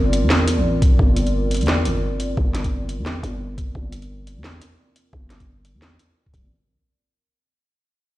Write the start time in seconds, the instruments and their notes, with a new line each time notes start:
Already playing: 808-style bass G1, analog synth pad C4 F4 A#4 D5
0.13 closed hi-hat
0.23 808-style bass E2
0.30 snare
0.48 closed hi-hat
0.58 808-style bass A1
0.82 808-style bass A#1, kick, closed hi-hat
0.99 808-style bass G1, kick
1.16 closed hi-hat
1.27 closed hi-hat
1.51 closed hi-hat
1.54 closed hi-hat
1.57 closed hi-hat
1.61 808-style bass E2, closed hi-hat
1.66 snare, closed hi-hat
1.85 808-style bass G1, closed hi-hat
2.20 closed hi-hat
2.37 808-style bass G1, kick
2.55 snare, closed hi-hat
2.64 kick, closed hi-hat
2.89 closed hi-hat
2.99 808-style bass E2
3.06 snare
3.23 808-style bass G1, closed hi-hat
3.58 kick, closed hi-hat
3.75 808-style bass G1, kick
3.92 closed hi-hat
4.02 closed hi-hat
4.27 closed hi-hat
4.37 808-style bass E2
4.44 snare
4.62 closed hi-hat
4.96 closed hi-hat
5.13 808-style bass G1, kick
5.30 snare, closed hi-hat
5.40 kick, closed hi-hat
5.65 closed hi-hat
5.74 808-style bass E2
5.82 snare
5.99 closed hi-hat
6.26 kick
6.34 808-style bass D1, kick, closed hi-hat
6.43 808-style bass A1